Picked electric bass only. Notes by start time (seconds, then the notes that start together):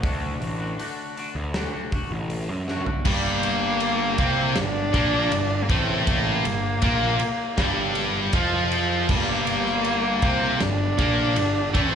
0.03 D2
0.41 A1
1.35 D2
2.11 A1
2.49 F#2
3.05 G1
4.18 C2
4.56 G1
4.94 A#1
5.32 G1
5.70 A1
6.45 G1
6.83 A#1
7.57 G1
8.33 F2
9.09 G1
10.22 C2
10.62 G1
10.99 A#1
11.37 G1
11.74 A1